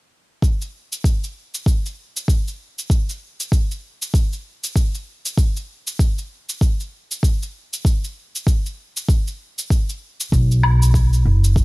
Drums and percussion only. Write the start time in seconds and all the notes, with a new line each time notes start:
0.42 kick, shaker
0.61 shaker
0.92 shaker
1.04 kick, shaker
1.24 shaker
1.54 shaker
1.66 kick, shaker
1.86 shaker
2.17 shaker
2.28 kick, shaker
2.48 shaker
2.79 shaker
2.90 kick, shaker
3.09 shaker
3.40 shaker
3.52 kick, shaker
3.71 shaker
4.02 shaker
4.14 kick, shaker
4.33 shaker
4.64 shaker
4.76 kick, shaker
4.95 shaker
5.26 shaker
5.38 kick, shaker
5.56 shaker
5.87 shaker
5.99 kick, shaker
6.18 shaker
6.49 shaker
6.61 kick, shaker
6.80 shaker
7.11 shaker
7.23 kick, shaker
7.42 shaker
7.73 shaker
7.85 kick, shaker
8.04 shaker
8.35 shaker
8.47 kick, shaker
8.66 shaker
8.97 shaker
9.09 kick, shaker
9.27 shaker
9.59 shaker
9.70 kick, shaker
9.89 shaker
10.20 shaker
10.32 kick, shaker
10.51 shaker
10.63 low woodblock
10.82 shaker
10.94 kick, shaker
11.13 shaker
11.44 shaker
11.56 kick, shaker